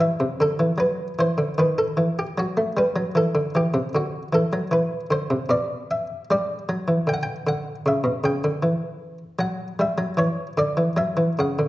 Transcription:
0.00 E3 E5
0.20 C3
0.40 D3 A4
0.59 E3
0.78 F#3 B4
1.19 E3 C5
1.38 D3
1.58 D#3 B4
1.78 A4
1.97 E3
2.19 G4
2.38 F#3 F#4
2.57 A3
2.77 G3 B4
2.96 F#3
3.15 E3 A4
3.35 D3
3.55 E3 G4
3.74 C3
3.95 D3 F#4
4.33 E3 A4
4.53 F#3
4.71 E3 B4
5.11 D3 C5
5.30 C3
5.49 B2 D5
5.91 E5
6.31 G3 D5
6.69 F#3
6.88 E3
7.07 D3 G5
7.14 F#5
7.23 G5
7.47 D3 F#5
7.86 C#3 E5
8.04 B2
8.24 C#3 G5
8.44 D3
8.63 E3
9.39 F#3 F#5
9.79 G3 E5
9.98 F#3
10.17 E3 C#5
10.58 D3 D5
10.77 E3
10.97 F#3 E5
11.17 E3
11.39 C#3 F#5
11.59 D3

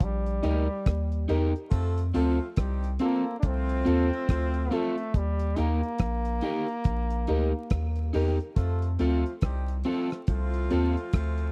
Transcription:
0.00 A#1 G3, kick, closed hi-hat
0.26 closed hi-hat
0.42 D2 D#4 G4 A#4, closed hi-hat
0.86 D#2, kick, cross-stick, closed hi-hat
1.12 closed hi-hat
1.28 E2 D#4 G4 A#4, closed hi-hat
1.55 G4 A#4, closed hi-hat
1.70 F2 A3 C4 F4 A4, kick, closed hi-hat
1.98 closed hi-hat
2.14 D2 F3 A3 C4 F4 A4, closed hi-hat
2.56 C2 G3 C4 D#4 G4, kick, cross-stick, closed hi-hat
2.84 closed hi-hat
2.99 A3 C4 F4 A4, closed hi-hat
3.04 A#3
3.40 A3 C4 D4, kick, closed hi-hat
3.44 C2 F3 C4 F4
3.69 closed hi-hat
3.85 D#2 C4 F4 A4, closed hi-hat
4.13 closed hi-hat
4.28 D2 F3 A3 C4 F4, kick, cross-stick, closed hi-hat
4.54 closed hi-hat
4.71 A3 C4 F4 A4, closed hi-hat
4.98 closed hi-hat
5.14 D#2 G3, kick, closed hi-hat
5.39 closed hi-hat
5.56 D#2 A#3 D#4 G4 A#4, closed hi-hat
5.83 closed hi-hat
5.98 A#1, kick, cross-stick, closed hi-hat
6.25 closed hi-hat
6.41 D#4 G4 A#4, closed hi-hat
6.68 closed hi-hat
6.84 A#1, kick, closed hi-hat
7.10 closed hi-hat
7.27 D2 D#4 G4 A#4, closed hi-hat
7.70 D#2, kick, cross-stick, closed hi-hat
7.96 closed hi-hat
8.13 E2 D#4 G4 A#4, open hi-hat
8.40 G4 A#4, closed hi-hat
8.56 F2 A3 C4 F4 A4, kick, closed hi-hat
8.82 closed hi-hat
8.99 D2 F3 A3 C4 F4 A4, closed hi-hat
9.26 closed hi-hat
9.41 C2 G3 C4 D#4 G4, kick, cross-stick, closed hi-hat
9.68 closed hi-hat
9.84 A3 C4 F4 A4, closed hi-hat
10.11 cross-stick, closed hi-hat
10.27 C2 F3 A3 C4 F4, kick, closed hi-hat
10.54 closed hi-hat
10.70 D#2 C4 F4 A4, closed hi-hat
10.97 closed hi-hat
11.13 D2 F3 A3 C4 F4, kick, cross-stick, closed hi-hat
11.38 closed hi-hat

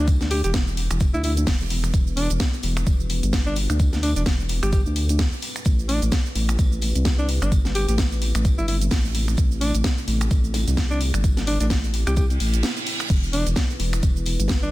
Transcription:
Already playing: D2 G3 B3 E4 B4, downlifter
0.08 kick, closed hi-hat, tambourine, cabasa
0.21 snare, cabasa
0.31 G4, open hi-hat, tambourine
0.44 E1 G4, snare, closed hi-hat, cabasa
0.54 kick, snare, closed hi-hat, tambourine, cabasa
0.67 snare, cabasa
0.77 open hi-hat, tambourine
0.91 E1, finger snap, closed hi-hat, cabasa
1.00 kick, closed hi-hat, tambourine, cabasa
1.14 D2 E4, cabasa
1.23 E4, open hi-hat, tambourine
1.37 closed hi-hat, cabasa
1.47 E1, kick, snare, closed hi-hat, open hi-hat, cabasa
1.61 snare, cabasa
1.70 open hi-hat, tambourine
1.83 finger snap, snare, closed hi-hat, cabasa
1.93 E1 F#4, kick, closed hi-hat, tambourine, cabasa
2.07 cabasa
2.17 D4, open hi-hat, tambourine
2.30 E1, closed hi-hat, cabasa
2.40 kick, snare, closed hi-hat, tambourine, cabasa
2.53 snare, cabasa
2.63 E1, open hi-hat, tambourine
2.76 finger snap, snare, closed hi-hat, cabasa
2.87 E1, kick, closed hi-hat, tambourine, cabasa
3.00 cabasa
3.09 open hi-hat, tambourine
3.23 G1, closed hi-hat, cabasa
3.33 kick, snare, closed hi-hat, tambourine, cabasa
3.46 D4, cabasa
3.56 open hi-hat, tambourine
3.70 D2, finger snap, closed hi-hat, cabasa
3.79 kick, closed hi-hat, tambourine, cabasa
3.93 snare, closed hi-hat, cabasa
4.03 D4, open hi-hat, tambourine
4.16 E1 D4, snare, closed hi-hat, cabasa
4.26 kick, snare, closed hi-hat, tambourine, cabasa
4.40 snare, cabasa
4.49 open hi-hat, tambourine
4.63 G1 G4, finger snap, closed hi-hat, cabasa
4.72 G4, kick, closed hi-hat, tambourine, cabasa
4.86 D2, cabasa
4.96 open hi-hat, tambourine
5.09 closed hi-hat, cabasa
5.19 kick, snare, closed hi-hat, open hi-hat, cabasa
5.33 snare, cabasa
5.42 open hi-hat, tambourine
5.55 finger snap, snare, closed hi-hat, cabasa
5.65 A1 A3 C4 E4 B4, kick, closed hi-hat, tambourine, cabasa
5.79 cabasa
5.89 D4, open hi-hat, tambourine
6.02 A1, closed hi-hat, cabasa
6.12 kick, snare, closed hi-hat, tambourine, cabasa
6.25 snare, cabasa
6.35 A1, open hi-hat, tambourine
6.49 finger snap, snare, closed hi-hat, cabasa
6.59 A1, kick, closed hi-hat, tambourine, cabasa
6.72 cabasa
6.81 open hi-hat, tambourine
6.95 C2, closed hi-hat, cabasa
7.05 kick, snare, closed hi-hat, tambourine, cabasa
7.19 D4, cabasa
7.28 open hi-hat, tambourine
7.42 G1 D4, finger snap, closed hi-hat, cabasa
7.52 kick, closed hi-hat, tambourine, cabasa
7.65 snare, cabasa
7.75 G4, open hi-hat, tambourine
7.88 A1 G4, snare, closed hi-hat, cabasa
7.98 kick, snare, closed hi-hat, tambourine, cabasa
8.12 snare, cabasa
8.22 open hi-hat, tambourine
8.35 A1, finger snap, closed hi-hat, cabasa
8.45 kick, closed hi-hat, tambourine, cabasa
8.58 G1 E4, cabasa
8.68 E4, open hi-hat, tambourine
8.81 closed hi-hat, cabasa
8.91 A1, kick, snare, closed hi-hat, open hi-hat, cabasa
9.05 snare, cabasa
9.15 open hi-hat, tambourine
9.28 finger snap, snare, closed hi-hat, cabasa
9.37 A1 A4, kick, closed hi-hat, tambourine, cabasa
9.51 cabasa
9.61 D4, open hi-hat, tambourine
9.74 A1, closed hi-hat, cabasa
9.84 kick, snare, closed hi-hat, tambourine, cabasa
9.97 snare, cabasa
10.08 A1, open hi-hat, tambourine
10.21 finger snap, snare, closed hi-hat, cabasa
10.31 A1, kick, closed hi-hat, tambourine, cabasa
10.44 cabasa
10.54 snare, open hi-hat, tambourine
10.67 C2, snare, closed hi-hat, cabasa
10.77 kick, snare, closed hi-hat, tambourine, cabasa
10.91 D4, snare, cabasa
11.01 open hi-hat, tambourine
11.14 G1, finger snap, closed hi-hat, cabasa
11.24 kick, closed hi-hat, tambourine, cabasa
11.37 snare, closed hi-hat, cabasa
11.47 D4, open hi-hat, tambourine
11.60 A1 D4, snare, closed hi-hat, cabasa
11.70 kick, snare, closed hi-hat, tambourine, cabasa
11.84 snare, closed hi-hat, cabasa
11.94 open hi-hat, tambourine
12.07 C2 G4, finger snap, closed hi-hat, cabasa
12.16 G4, kick, closed hi-hat, tambourine, reverse cymbal, cabasa
12.30 closed hi-hat, cabasa
12.40 A1, open hi-hat, tambourine
12.54 closed hi-hat, cabasa
12.63 snare, closed hi-hat, tambourine, cabasa
12.77 snare, closed hi-hat, cabasa
12.87 open hi-hat, tambourine
13.00 finger snap, snare, closed hi-hat, cabasa
13.10 E1 G3 B3 B4, kick, closed hi-hat, crash, tambourine, cabasa
13.23 cabasa
13.33 D4, open hi-hat, tambourine
13.46 E1, closed hi-hat, cabasa
13.56 kick, snare, closed hi-hat, tambourine, cabasa
13.70 snare, cabasa
13.80 E1, open hi-hat, tambourine
13.93 finger snap, snare, closed hi-hat, cabasa
14.03 E1, kick, closed hi-hat, tambourine, cabasa
14.16 cabasa
14.26 open hi-hat, tambourine
14.39 G1, closed hi-hat, cabasa
14.48 kick, snare, closed hi-hat, tambourine, cabasa
14.63 D4, cabasa

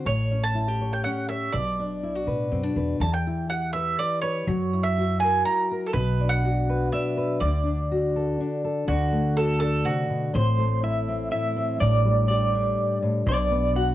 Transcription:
0.05 A1 A2 C#5
0.31 C#4
0.44 A5
0.55 E4
0.68 G4
0.81 C#5
0.93 G5
1.04 C#4 F#5
1.29 C#5 E5
1.52 B1 B2 D5
1.79 D4
2.03 E4
2.15 F#4
2.27 A2 B4
2.51 F#2 C4
2.63 D4
2.76 E2 B4
3.00 E2 E3 A5
3.13 G5
3.27 E4
3.50 G4 F#5
3.73 B4 E5
3.99 E4 D5
4.21 B4 C#5
4.47 F#2 F#3
4.73 E4
4.83 E5
4.98 F#4
5.20 A#4 G#5
5.45 E4 A#5
5.71 A#4
5.87 A4
5.93 B1 B2 B4
6.20 D4
6.29 F#5
6.44 F#4
6.70 B4
6.92 D4 E5
7.17 B4
7.40 D2 D3 D5
7.66 D4
7.92 F#4
8.16 A4
8.40 D4
8.64 A4
8.88 D2 D3 A3 F#4
9.12 A3
9.37 F#4 A4
9.60 D4 A4
9.85 C3 F#4
10.10 B2
10.33 A1 A2 E3 A3 C4 C5
10.58 A3
10.83 E4 E5
11.08 C4
11.32 E4 E5
11.56 C4
11.80 A1 A2 G3 D4 D5
12.05 G3
12.28 G4 D5
12.54 D4
13.02 A2
13.26 B1 B2 F#3 B3 D4 D5
13.51 B3
13.76 F#4 F#5

